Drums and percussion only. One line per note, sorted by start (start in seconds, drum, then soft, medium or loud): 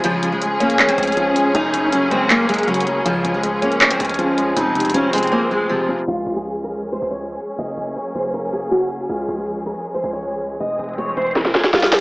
0.04 closed hi-hat medium
0.23 closed hi-hat medium
0.42 closed hi-hat medium
0.60 closed hi-hat medium
0.70 closed hi-hat medium
0.79 clap loud
0.79 closed hi-hat medium
0.89 closed hi-hat medium
0.98 closed hi-hat medium
1.03 closed hi-hat medium
1.07 closed hi-hat medium
1.12 closed hi-hat soft
1.17 closed hi-hat medium
1.36 closed hi-hat medium
1.55 closed hi-hat medium
1.74 closed hi-hat medium
1.92 closed hi-hat medium
2.11 closed hi-hat medium
2.30 clap loud
2.30 closed hi-hat medium
2.49 closed hi-hat medium
2.54 closed hi-hat medium
2.58 closed hi-hat medium
2.63 closed hi-hat soft
2.68 closed hi-hat soft
2.74 closed hi-hat medium
2.80 closed hi-hat medium
2.87 closed hi-hat medium
3.06 closed hi-hat medium
3.25 closed hi-hat medium
3.43 closed hi-hat medium
3.62 closed hi-hat medium
3.72 closed hi-hat medium
3.81 clap loud
3.81 closed hi-hat medium
3.91 closed hi-hat medium
4.00 closed hi-hat medium
4.05 closed hi-hat medium
4.09 closed hi-hat medium
4.14 closed hi-hat soft
4.19 closed hi-hat medium
4.38 closed hi-hat medium
4.57 closed hi-hat medium
4.75 closed hi-hat medium
4.80 closed hi-hat medium
4.85 closed hi-hat medium
4.90 closed hi-hat medium
4.94 closed hi-hat medium
5.13 closed hi-hat medium
5.13 open hi-hat medium
5.18 closed hi-hat medium
5.23 closed hi-hat medium
5.27 closed hi-hat soft
6.27 closed hi-hat medium
6.45 closed hi-hat medium
6.64 closed hi-hat medium
6.74 closed hi-hat medium
6.83 closed hi-hat soft
6.92 closed hi-hat medium
7.02 closed hi-hat medium
7.07 closed hi-hat medium
7.11 closed hi-hat medium
7.16 closed hi-hat soft
7.21 closed hi-hat medium
7.40 closed hi-hat medium
7.59 closed hi-hat medium
7.78 closed hi-hat medium
7.96 closed hi-hat medium
8.15 closed hi-hat medium
8.34 closed hi-hat medium
8.53 closed hi-hat medium
8.58 closed hi-hat medium
8.62 closed hi-hat medium
8.67 closed hi-hat soft
8.72 closed hi-hat soft
8.78 closed hi-hat medium
8.84 closed hi-hat medium
8.91 closed hi-hat medium
9.09 closed hi-hat medium
9.28 closed hi-hat medium
9.47 closed hi-hat medium
9.66 closed hi-hat medium
9.75 closed hi-hat medium
9.85 closed hi-hat soft
9.94 closed hi-hat medium
10.04 closed hi-hat medium
10.09 closed hi-hat medium
10.13 closed hi-hat medium
10.18 closed hi-hat soft
10.23 closed hi-hat medium
10.42 closed hi-hat medium
10.60 closed hi-hat medium
10.79 closed hi-hat medium
10.84 closed hi-hat medium
10.89 closed hi-hat medium
10.93 closed hi-hat medium
10.98 closed hi-hat medium
11.17 closed hi-hat medium
11.22 closed hi-hat medium
11.26 closed hi-hat soft
11.31 closed hi-hat soft
11.36 snare medium
11.36 closed hi-hat medium
11.45 snare medium
11.55 snare medium
11.55 closed hi-hat soft
11.64 snare medium
11.64 closed hi-hat medium
11.74 snare medium
11.74 closed hi-hat medium
11.80 snare medium
11.80 closed hi-hat medium
11.86 closed hi-hat medium
11.92 snare medium
11.92 closed hi-hat medium